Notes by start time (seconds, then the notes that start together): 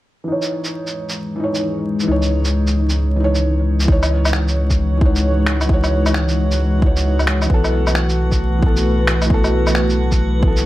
0.24 E3 D#4
0.28 E3 G#3 D#4 C#5
0.42 shaker
0.64 shaker
0.87 shaker
1.09 shaker
1.36 E3 D#4
1.44 C#5
1.55 shaker
2.00 E3, shaker
2.07 C#2 D#4
2.11 C#5
2.22 shaker
2.45 shaker
2.67 shaker
2.90 shaker
3.16 E3 D#4
3.24 C#5
3.35 shaker
3.80 E3, shaker
3.88 C#2 E3 G#3 D#4 F#4 C#5 F#5, kick
4.03 low woodblock, shaker
4.25 low woodblock, shaker
4.33 finger snap
4.48 shaker
4.70 kick, shaker
4.97 E3, kick
5.01 D#4 C#5
5.16 shaker
5.46 finger snap
5.61 low woodblock, shaker
5.65 E3, kick
5.69 D#4
5.73 C#5
5.84 low woodblock, shaker
6.06 low woodblock, shaker
6.14 finger snap
6.29 shaker
6.51 shaker
6.78 E3 D#4, kick
6.86 C#5
6.97 shaker
7.19 low woodblock, shaker
7.27 finger snap
7.42 low woodblock, shaker
7.46 E3 B3
7.50 B1 A3 F#4 B4, kick
7.54 A4
7.64 low woodblock, shaker
7.87 low woodblock, shaker
7.95 finger snap
8.09 shaker
8.32 kick, shaker
8.59 E3 B3, kick
8.66 A4
8.77 shaker
9.07 finger snap
9.22 low woodblock, shaker
9.26 E3 B3
9.30 A4, kick
9.44 low woodblock, shaker
9.67 low woodblock, shaker
9.75 finger snap
9.89 shaker
10.12 kick, shaker
10.39 E3 B3, kick
10.47 A4
10.57 shaker